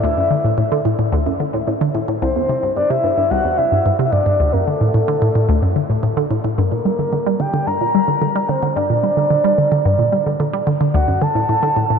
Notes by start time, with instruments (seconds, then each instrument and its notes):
0.04 synth arpeggio sound D2, soft synth lead E5
0.17 synth arpeggio sound F#2
0.31 synth arpeggio sound D3
0.44 synth arpeggio sound A2
0.58 synth arpeggio sound A2
0.72 synth arpeggio sound D3
0.85 synth arpeggio sound A2
0.99 synth arpeggio sound A2
1.12 synth arpeggio sound D2
1.26 synth arpeggio sound F#2
1.40 synth arpeggio sound D3
1.54 synth arpeggio sound A2
1.68 synth arpeggio sound A2
1.81 synth arpeggio sound D3
1.95 synth arpeggio sound A2
2.08 synth arpeggio sound A2
2.21 synth arpeggio sound C2, soft synth lead C5
2.36 synth arpeggio sound E2
2.49 synth arpeggio sound C3
2.63 synth arpeggio sound G2
2.76 synth arpeggio sound G2, soft synth lead D5
2.89 synth arpeggio sound C3, soft synth lead E5
3.04 synth arpeggio sound G2
3.18 synth arpeggio sound G2
3.30 synth arpeggio sound C2, soft synth lead F#5
3.45 synth arpeggio sound E2
3.57 synth arpeggio sound C3, soft synth lead E5
3.72 synth arpeggio sound G2
3.86 synth arpeggio sound G2
3.99 synth arpeggio sound C3
4.05 soft synth lead E5
4.11 synth arpeggio sound G2, soft synth lead D5
4.26 synth arpeggio sound G2
4.40 synth arpeggio sound D2
4.52 synth arpeggio sound F#2, soft synth lead A#4
4.66 synth arpeggio sound D3, soft synth lead A4
4.81 synth arpeggio sound A2
4.94 synth arpeggio sound A2
5.08 synth arpeggio sound D3
5.22 synth arpeggio sound A2
5.35 synth arpeggio sound A2
5.49 synth arpeggio sound D2
5.62 synth arpeggio sound F#2
5.76 synth arpeggio sound D3
5.90 synth arpeggio sound A2
6.03 synth arpeggio sound A2
6.17 synth arpeggio sound D3
6.31 synth arpeggio sound A2
6.45 synth arpeggio sound A2
6.58 synth arpeggio sound G2, soft synth lead A#4
6.72 synth arpeggio sound A#2
6.85 synth arpeggio sound G3
6.99 synth arpeggio sound D3
7.13 synth arpeggio sound D3
7.26 synth arpeggio sound G3
7.40 synth arpeggio sound D3, soft synth lead G5
7.54 synth arpeggio sound D3
7.66 synth arpeggio sound G2, soft synth lead A#5
7.81 synth arpeggio sound A#2
7.95 synth arpeggio sound G3
8.08 synth arpeggio sound D3
8.22 synth arpeggio sound D3
8.36 synth arpeggio sound G3
8.48 synth arpeggio sound D3, soft synth lead C5
8.63 synth arpeggio sound D3
8.76 synth arpeggio sound G2, soft synth lead D5
8.90 synth arpeggio sound A#2
9.03 synth arpeggio sound G3
9.17 synth arpeggio sound D3
9.30 synth arpeggio sound D3
9.44 synth arpeggio sound G3
9.58 synth arpeggio sound D3
9.72 synth arpeggio sound D3
9.85 synth arpeggio sound G2
9.99 synth arpeggio sound A#2
10.12 synth arpeggio sound G3
10.26 synth arpeggio sound D3
10.40 synth arpeggio sound D3
10.53 synth arpeggio sound G3
10.67 synth arpeggio sound D3
10.81 synth arpeggio sound D3
10.94 synth arpeggio sound D2, soft synth lead F#5
11.08 synth arpeggio sound F#2
11.22 synth arpeggio sound D3, soft synth lead A5
11.35 synth arpeggio sound A2
11.49 synth arpeggio sound A2
11.63 synth arpeggio sound D3
11.77 synth arpeggio sound A2
11.90 synth arpeggio sound A2